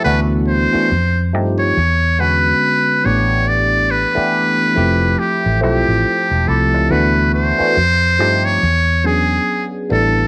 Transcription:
0.04 fingered electric bass D2, tine electric piano E3 A3 B3 D4 F#4, muted trumpet B4
0.48 muted trumpet C5
0.72 tine electric piano E3 A3 B3 D4 F#4, muted fingered electric bass stroke
0.92 fingered electric bass F2
1.33 fingered electric bass G2, tine electric piano F3 A3 C4 D#4 G4
1.59 muted trumpet C#5
1.77 fingered electric bass E2
2.18 tine electric piano D3 G#3 B3 C#4 F#4, muted trumpet B4
3.04 fingered electric bass A1, tine electric piano E3 A3 B3 D4 G4, muted trumpet C#5
3.48 muted trumpet D5
3.91 muted trumpet B4
4.14 tine electric piano E3 A3 B3 D4 G4, muted fingered electric bass stroke
4.75 fingered electric bass F1, tine electric piano F3 A3 C4 E4 G4
5.19 muted trumpet G4
5.46 fingered electric bass A1
5.61 fingered electric bass B1, tine electric piano F3 A3 C4 E4 A4, muted trumpet G4
5.88 fingered electric bass A1
6.31 fingered electric bass E1
6.47 fingered electric bass C2, tine electric piano F3 A3 C4 E4 G4, muted trumpet A4
6.74 fingered electric bass C#2
6.90 fingered electric bass D2, tine electric piano E3 A3 B3 D4 F#4, muted trumpet B4
7.35 muted trumpet C5
7.58 tine electric piano E3 A3 B3 D4 F#4, muted fingered electric bass stroke
7.77 fingered electric bass F2
8.18 fingered electric bass G2, tine electric piano F3 A3 C4 D#4 G4
8.45 muted trumpet C#5
8.63 fingered electric bass E2
9.04 tine electric piano F#3 B3 C#4 D4 G#4, muted trumpet G#4
9.89 fingered electric bass A1, tine electric piano G3 B3 D4 E4 A4, muted trumpet A4

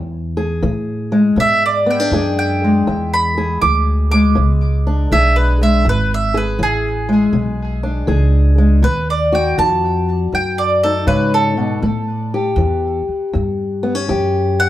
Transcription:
Already playing: steel-string acoustic guitar E2, upright bass E2
0.37 steel-string acoustic guitar G#4
0.63 upright bass A2, steel-string acoustic guitar E3
1.12 steel-string acoustic guitar G#3
1.36 upright bass G#2, steel-string acoustic guitar B2, mandolin E5
1.66 mandolin D5
1.86 steel-string acoustic guitar B3
1.90 mandolin G5
2.00 steel-string acoustic guitar D4
2.11 upright bass F#2, steel-string acoustic guitar E3 G#4
2.39 mandolin G5
2.64 steel-string acoustic guitar G#3
2.87 steel-string acoustic guitar E2, upright bass E2
3.14 mandolin B5
3.38 steel-string acoustic guitar G#4
3.61 upright bass D2, steel-string acoustic guitar E3, mandolin D6
4.11 steel-string acoustic guitar G#3, mandolin D6
4.35 upright bass C#2, steel-string acoustic guitar B2
4.87 steel-string acoustic guitar D4
5.12 upright bass B1, steel-string acoustic guitar E3 G#4, mandolin E5
5.36 mandolin B4
5.61 steel-string acoustic guitar G#3, mandolin E5
5.85 upright bass G#1, steel-string acoustic guitar E2
5.89 mandolin B4
6.14 mandolin E5
6.34 steel-string acoustic guitar G#4, mandolin B4
6.59 upright bass A1, steel-string acoustic guitar E3
6.63 mandolin G#4
7.09 steel-string acoustic guitar G#3
7.33 upright bass B1, steel-string acoustic guitar B2
7.83 steel-string acoustic guitar D4
8.07 upright bass C#2, steel-string acoustic guitar E3 G#4
8.58 steel-string acoustic guitar G#3
8.82 upright bass D#2, steel-string acoustic guitar B2, mandolin B4
9.10 mandolin D5
9.32 steel-string acoustic guitar F#4, mandolin G5
9.58 upright bass F2, steel-string acoustic guitar D#3, mandolin A5
10.32 upright bass F#2, steel-string acoustic guitar F#2, mandolin G5
10.58 mandolin D5
10.84 steel-string acoustic guitar D#4, mandolin A4
11.07 upright bass G#2, steel-string acoustic guitar C#3, mandolin B4
11.34 mandolin A4
11.57 steel-string acoustic guitar B2
11.82 upright bass A2, steel-string acoustic guitar A2
12.34 steel-string acoustic guitar G4
12.56 upright bass E2, steel-string acoustic guitar E3
13.08 muted upright bass stroke
13.33 steel-string acoustic guitar E2, upright bass G2
13.83 steel-string acoustic guitar B3
13.95 steel-string acoustic guitar C#4
14.08 upright bass F#2, steel-string acoustic guitar E3 G4
14.60 mandolin F#5

